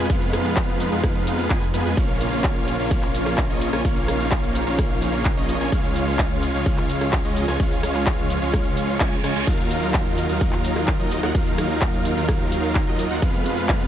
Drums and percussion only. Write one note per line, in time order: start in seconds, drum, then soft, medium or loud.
0.10 kick loud
0.10 closed hi-hat loud
0.10 ride medium
0.10 shaker soft
0.22 closed hi-hat soft
0.22 shaker soft
0.33 cross-stick medium
0.33 open hi-hat loud
0.33 shaker medium
0.45 closed hi-hat soft
0.45 shaker soft
0.57 kick loud
0.57 clap loud
0.57 closed hi-hat medium
0.57 ride medium
0.57 shaker soft
0.68 closed hi-hat soft
0.68 shaker soft
0.80 open hi-hat loud
0.80 shaker medium
0.92 closed hi-hat soft
0.92 shaker soft
1.04 kick loud
1.04 cross-stick medium
1.04 closed hi-hat medium
1.04 ride medium
1.04 shaker soft
1.15 closed hi-hat soft
1.27 open hi-hat loud
1.27 shaker medium
1.39 closed hi-hat soft
1.39 shaker soft
1.50 kick loud
1.50 clap loud
1.50 closed hi-hat medium
1.50 ride medium
1.50 shaker soft
1.62 closed hi-hat soft
1.62 shaker soft
1.74 open hi-hat loud
1.74 shaker medium
1.86 closed hi-hat soft
1.86 shaker soft
1.97 kick loud
1.97 closed hi-hat medium
1.97 ride medium
1.97 shaker soft
2.09 closed hi-hat soft
2.09 shaker soft
2.21 open hi-hat loud
2.21 shaker medium
2.33 closed hi-hat soft
2.33 shaker soft
2.44 kick loud
2.44 clap loud
2.44 closed hi-hat medium
2.44 ride medium
2.44 shaker soft
2.56 closed hi-hat soft
2.68 open hi-hat medium
2.68 shaker medium
2.79 closed hi-hat soft
2.79 shaker soft
2.91 kick loud
2.91 closed hi-hat medium
2.91 ride medium
2.91 shaker soft
3.03 clap soft
3.03 closed hi-hat soft
3.15 open hi-hat loud
3.15 shaker medium
3.26 cross-stick medium
3.26 closed hi-hat soft
3.26 shaker soft
3.38 kick loud
3.38 clap loud
3.38 closed hi-hat medium
3.38 ride medium
3.38 shaker soft
3.50 closed hi-hat soft
3.50 shaker soft
3.61 open hi-hat loud
3.61 shaker medium
3.73 cross-stick medium
3.73 closed hi-hat soft
3.73 shaker soft
3.85 kick loud
3.85 closed hi-hat loud
3.85 ride medium
3.85 shaker soft
3.97 closed hi-hat soft
3.97 shaker soft
4.08 cross-stick medium
4.08 open hi-hat loud
4.08 shaker medium
4.20 closed hi-hat soft
4.20 shaker soft
4.31 kick loud
4.31 clap loud
4.31 closed hi-hat medium
4.31 ride medium
4.31 shaker soft
4.43 closed hi-hat soft
4.43 shaker soft
4.55 open hi-hat medium
4.55 shaker medium
4.67 closed hi-hat soft
4.67 shaker soft
4.79 kick loud
4.79 cross-stick medium
4.79 closed hi-hat medium
4.79 ride medium
4.79 shaker soft
4.90 closed hi-hat soft
5.02 open hi-hat loud
5.02 shaker medium
5.14 closed hi-hat soft
5.14 shaker soft
5.25 kick loud
5.25 clap loud
5.25 closed hi-hat medium
5.25 ride medium
5.25 shaker soft
5.37 closed hi-hat soft
5.37 shaker soft
5.49 open hi-hat medium
5.49 shaker medium
5.61 closed hi-hat soft
5.61 shaker soft
5.72 kick loud
5.72 closed hi-hat medium
5.72 ride medium
5.72 shaker soft
5.84 closed hi-hat soft
5.84 shaker soft
5.96 open hi-hat loud
5.96 shaker medium
6.08 closed hi-hat soft
6.08 shaker soft
6.19 kick loud
6.19 clap loud
6.19 closed hi-hat loud
6.19 ride medium
6.19 shaker soft
6.31 closed hi-hat soft
6.43 open hi-hat medium
6.43 shaker medium
6.54 closed hi-hat soft
6.54 shaker soft
6.66 kick loud
6.66 closed hi-hat loud
6.66 ride medium
6.66 shaker soft
6.78 clap soft
6.78 closed hi-hat soft
6.90 open hi-hat loud
6.90 shaker medium
7.01 cross-stick medium
7.01 closed hi-hat soft
7.01 shaker soft
7.13 kick loud
7.13 clap loud
7.13 closed hi-hat loud
7.13 ride medium
7.13 shaker medium
7.25 closed hi-hat soft
7.25 shaker soft
7.36 open hi-hat medium
7.36 shaker medium
7.48 cross-stick medium
7.48 closed hi-hat soft
7.48 shaker soft
7.60 kick loud
7.60 closed hi-hat loud
7.60 ride medium
7.60 shaker soft
7.72 closed hi-hat soft
7.72 shaker soft
7.83 cross-stick medium
7.83 open hi-hat loud
7.83 shaker medium
7.95 clap soft
7.95 closed hi-hat soft
7.95 shaker soft
8.06 kick loud
8.06 clap loud
8.06 closed hi-hat loud
8.06 ride medium
8.06 shaker soft
8.18 closed hi-hat soft
8.18 shaker soft
8.30 open hi-hat medium
8.30 shaker medium
8.42 closed hi-hat soft
8.42 shaker soft
8.54 kick loud
8.54 cross-stick medium
8.54 closed hi-hat loud
8.54 ride medium
8.54 shaker soft
8.65 closed hi-hat soft
8.65 shaker soft
8.77 open hi-hat loud
8.77 shaker medium
8.89 closed hi-hat soft
8.89 shaker soft
9.00 kick loud
9.00 clap loud
9.00 closed hi-hat loud
9.00 ride medium
9.00 shaker soft
9.12 closed hi-hat soft
9.12 shaker soft
9.24 cross-stick medium
9.24 open hi-hat medium
9.24 shaker medium
9.36 closed hi-hat soft
9.36 shaker soft
9.47 kick loud
9.47 closed hi-hat loud
9.47 crash medium
9.47 ride medium
9.47 shaker soft
9.59 closed hi-hat soft
9.59 shaker soft
9.71 open hi-hat loud
9.71 shaker medium
9.82 closed hi-hat soft
9.82 shaker soft
9.94 kick loud
9.94 clap loud
9.94 closed hi-hat loud
9.94 ride medium
9.94 shaker soft
10.06 closed hi-hat soft
10.18 open hi-hat loud
10.18 shaker medium
10.29 closed hi-hat soft
10.29 shaker soft
10.41 kick loud
10.41 closed hi-hat loud
10.41 ride medium
10.41 shaker soft
10.53 clap soft
10.53 closed hi-hat soft
10.65 open hi-hat loud
10.65 shaker medium
10.76 cross-stick medium
10.76 closed hi-hat soft
10.76 shaker soft
10.88 kick loud
10.88 clap loud
10.88 closed hi-hat loud
10.88 ride medium
10.88 shaker soft
11.00 closed hi-hat soft
11.00 shaker soft
11.11 open hi-hat loud
11.11 shaker medium
11.23 cross-stick medium
11.23 closed hi-hat soft
11.23 shaker soft
11.35 kick loud
11.35 closed hi-hat loud
11.35 ride medium
11.35 shaker soft
11.47 closed hi-hat soft
11.47 shaker soft
11.58 cross-stick medium
11.58 open hi-hat loud
11.58 shaker medium
11.70 closed hi-hat soft
11.70 shaker soft
11.82 kick loud
11.82 clap loud
11.82 closed hi-hat loud
11.82 ride medium
11.82 shaker soft
11.93 closed hi-hat soft
11.93 shaker soft
12.05 open hi-hat loud
12.05 shaker medium
12.17 closed hi-hat soft
12.17 shaker soft
12.29 kick loud
12.29 cross-stick medium
12.29 closed hi-hat loud
12.29 ride medium
12.29 shaker soft
12.40 closed hi-hat soft
12.52 open hi-hat loud
12.52 shaker medium
12.64 closed hi-hat soft
12.64 shaker soft
12.75 kick loud
12.75 clap loud
12.75 closed hi-hat loud
12.75 ride medium
12.75 shaker soft
12.87 closed hi-hat soft
12.87 shaker soft
12.99 open hi-hat loud
12.99 shaker medium
13.11 closed hi-hat soft
13.11 shaker soft
13.22 kick loud
13.22 closed hi-hat loud
13.22 ride medium
13.22 shaker soft
13.34 closed hi-hat soft
13.34 shaker soft
13.46 open hi-hat loud
13.46 shaker medium
13.58 closed hi-hat soft
13.58 shaker soft
13.69 kick loud
13.69 clap loud
13.69 closed hi-hat loud
13.69 ride medium
13.69 shaker soft
13.81 closed hi-hat soft